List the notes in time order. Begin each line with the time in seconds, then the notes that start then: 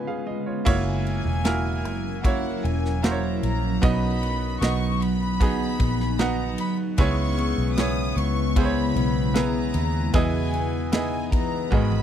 Already playing: G#2 C#3 G#3 B3 F4 B4 C#5 D#5 G#5 B5
0.07 G#4 F5
0.26 F4 D#5
0.46 F4 C#5
0.65 F#1 C#3 F#3 A#3 C#4 E4 F#4 A#4 C#5 G#5, kick, crash
1.07 ride
1.26 E1
1.44 A#3 E4 F#4 A#4, snare, ride
1.84 F#1, ride
2.24 A#3 E4 F#4 C#5 F#5, kick, ride
2.64 E1 G#5, ride
2.85 snare
3.03 A#3 E4 F#4 C5 A#5, snare, ride
3.11 C#5
3.43 A#1 A#5, ride
3.81 B1 B2 F#3 B3 D#4 F#4 D#5 B5, kick, ride
4.23 ride
4.61 B1 B3 D#4 F#4 D#5 C#6, snare, ride
5.01 B5, ride
5.40 B3 D#4 F#4 G#4, kick, ride
5.79 A#1, kick, ride
6.00 snare
6.19 B3 D#4 F#4 F#5 A#5, snare, ride
6.58 B5, ride
6.98 C#2 C#3 G#3 B3 E4 G#4 C#5 C#6, kick, ride
7.38 B3, ride
7.58 B1
7.77 B3 E4 G#4 C#5 D#6, snare, ride
8.16 C#2 B3 C#6, ride
8.55 B3 E4 G#4 C5 B5, kick, ride
8.65 C#5
8.95 B1 B3, ride
9.34 B3 E4 G#4 B4 A#5, snare, ride
9.74 D#2 E4, ride
10.13 E2 B2 E3 B3 E4 G#4 D#5 G#5, kick, ride
10.54 B3, ride
10.92 B3 D#4 E4 G#4 D#5 G#5, snare, ride
11.32 B3 A#5, kick, ride
11.71 G#1 G#2 D#3 G#3 B3 F#4 G#4 D#5 B5, kick, high tom
11.92 high tom